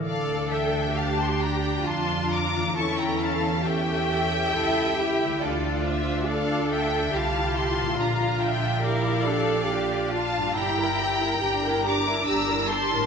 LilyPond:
<<
  \new Staff \with { instrumentName = "Violin section" } { \time 3/4 \key d \minor \tempo 4 = 69 f''8 g''8 a''16 c'''16 bes''8 c'''8 d'''8 | cis'''16 bes''16 a''8 g''2 | d''8 e''8 f''8 g''8 a''8 c'''8 | bes''8 g''8 f''4. a''8 |
bes''4. d'''8 e'''8 c'''8 | }
  \new Staff \with { instrumentName = "Violin section" } { \time 3/4 \key d \minor d''8 e''8 f''16 a''16 g''8 a''8 bes''8 | a''16 g''16 f''8 e''2 | a'8 c''8 d''8 e''8 f''8 a''8 | f''8 e''8 d''4. f''8 |
g''4. bes''8 bes''8 a''8 | }
  \new Staff \with { instrumentName = "Cello section" } { \time 3/4 \key d \minor a'4 g'4 f'4 | e'4 g'4 a'8 g'8 | f'4 a'4 g'4 | f'4 bes'8 a'8 g'8 f'8 |
e'4 d'2 | }
  \new Staff \with { instrumentName = "Viola section" } { \time 3/4 \key d \minor << { a'4 g'4 f'4 | a'4 a'4 g'4 | f'4 f'4 e'4 | d'4 g'4 f'4 |
g'16 bes'16 g'16 bes'16 g'16 bes'16 g'16 bes'16 g'16 bes'16 g'16 bes'16 | } \\ { d'2. | cis'4 cis'4 e'8 e'8 | d'2 f'4~ | f'4 e'8 d'8 d'4 |
g'16 e'16 g'16 e'16 g'16 e'16 g'16 e'16 g'16 e'16 g'16 e'16 | } >> }
  \new Staff \with { instrumentName = "Harp" } { \time 3/4 \key d \minor <d a a' d''>2. | <e a a' cis''>2. | <d a a' d''>2. | <bes, bes a' d''>2. |
<g, bes g' e''>2. | }
  \new Staff \with { instrumentName = "Double bass section" } { \clef bass \time 3/4 \key d \minor d,2 f,4 | e,2 cis,4 | d,2 c,4 | bes,,2. |
g,,4 g,,4 g,,4 | }
>>